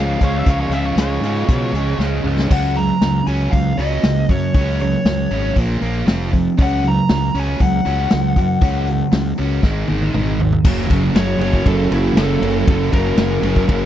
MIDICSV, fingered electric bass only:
0, 0, Header, 1, 2, 480
1, 0, Start_track
1, 0, Tempo, 508475
1, 447, Time_signature, 4, 2, 24, 8
1, 13078, End_track
2, 0, Start_track
2, 0, Title_t, "Fingered electric bass"
2, 0, Program_c, 0, 33
2, 0, Note_on_c, 0, 37, 91
2, 156, Note_off_c, 0, 37, 0
2, 199, Note_on_c, 0, 37, 85
2, 402, Note_off_c, 0, 37, 0
2, 435, Note_on_c, 0, 37, 84
2, 640, Note_off_c, 0, 37, 0
2, 656, Note_on_c, 0, 37, 85
2, 870, Note_off_c, 0, 37, 0
2, 906, Note_on_c, 0, 37, 82
2, 1116, Note_off_c, 0, 37, 0
2, 1134, Note_on_c, 0, 44, 88
2, 1350, Note_off_c, 0, 44, 0
2, 1405, Note_on_c, 0, 47, 78
2, 1608, Note_off_c, 0, 47, 0
2, 1630, Note_on_c, 0, 37, 85
2, 1840, Note_off_c, 0, 37, 0
2, 1874, Note_on_c, 0, 37, 87
2, 2082, Note_off_c, 0, 37, 0
2, 2112, Note_on_c, 0, 37, 79
2, 2322, Note_off_c, 0, 37, 0
2, 2363, Note_on_c, 0, 37, 91
2, 2738, Note_off_c, 0, 37, 0
2, 2842, Note_on_c, 0, 37, 77
2, 3033, Note_off_c, 0, 37, 0
2, 3086, Note_on_c, 0, 37, 79
2, 3276, Note_off_c, 0, 37, 0
2, 3332, Note_on_c, 0, 37, 81
2, 3520, Note_off_c, 0, 37, 0
2, 3562, Note_on_c, 0, 37, 81
2, 3754, Note_off_c, 0, 37, 0
2, 3809, Note_on_c, 0, 37, 81
2, 3998, Note_off_c, 0, 37, 0
2, 4053, Note_on_c, 0, 42, 90
2, 4241, Note_off_c, 0, 42, 0
2, 4291, Note_on_c, 0, 37, 91
2, 4665, Note_off_c, 0, 37, 0
2, 4767, Note_on_c, 0, 37, 91
2, 4957, Note_off_c, 0, 37, 0
2, 5013, Note_on_c, 0, 32, 91
2, 5201, Note_off_c, 0, 32, 0
2, 5251, Note_on_c, 0, 34, 81
2, 5440, Note_off_c, 0, 34, 0
2, 5492, Note_on_c, 0, 34, 84
2, 5681, Note_off_c, 0, 34, 0
2, 5726, Note_on_c, 0, 29, 84
2, 6102, Note_off_c, 0, 29, 0
2, 6218, Note_on_c, 0, 37, 86
2, 6590, Note_off_c, 0, 37, 0
2, 6699, Note_on_c, 0, 37, 87
2, 6885, Note_off_c, 0, 37, 0
2, 6933, Note_on_c, 0, 37, 90
2, 7121, Note_off_c, 0, 37, 0
2, 7179, Note_on_c, 0, 37, 85
2, 7365, Note_off_c, 0, 37, 0
2, 7418, Note_on_c, 0, 37, 88
2, 7604, Note_off_c, 0, 37, 0
2, 7675, Note_on_c, 0, 37, 94
2, 7855, Note_off_c, 0, 37, 0
2, 7893, Note_on_c, 0, 42, 94
2, 8081, Note_off_c, 0, 42, 0
2, 8129, Note_on_c, 0, 37, 91
2, 8503, Note_off_c, 0, 37, 0
2, 8611, Note_on_c, 0, 37, 90
2, 8799, Note_off_c, 0, 37, 0
2, 8864, Note_on_c, 0, 37, 96
2, 9047, Note_off_c, 0, 37, 0
2, 9089, Note_on_c, 0, 32, 85
2, 9278, Note_off_c, 0, 32, 0
2, 9344, Note_on_c, 0, 32, 93
2, 9527, Note_off_c, 0, 32, 0
2, 9578, Note_on_c, 0, 32, 99
2, 9947, Note_off_c, 0, 32, 0
2, 10052, Note_on_c, 0, 30, 104
2, 10279, Note_off_c, 0, 30, 0
2, 10286, Note_on_c, 0, 30, 91
2, 10509, Note_off_c, 0, 30, 0
2, 10515, Note_on_c, 0, 30, 98
2, 10745, Note_off_c, 0, 30, 0
2, 10750, Note_on_c, 0, 30, 94
2, 10986, Note_off_c, 0, 30, 0
2, 11004, Note_on_c, 0, 30, 89
2, 11233, Note_off_c, 0, 30, 0
2, 11242, Note_on_c, 0, 30, 88
2, 11464, Note_off_c, 0, 30, 0
2, 11470, Note_on_c, 0, 30, 94
2, 11705, Note_off_c, 0, 30, 0
2, 11718, Note_on_c, 0, 30, 92
2, 11949, Note_off_c, 0, 30, 0
2, 11967, Note_on_c, 0, 30, 100
2, 12193, Note_off_c, 0, 30, 0
2, 12207, Note_on_c, 0, 30, 94
2, 12416, Note_off_c, 0, 30, 0
2, 12422, Note_on_c, 0, 30, 94
2, 12658, Note_off_c, 0, 30, 0
2, 12671, Note_on_c, 0, 30, 88
2, 12902, Note_off_c, 0, 30, 0
2, 12924, Note_on_c, 0, 30, 91
2, 13078, Note_off_c, 0, 30, 0
2, 13078, End_track
0, 0, End_of_file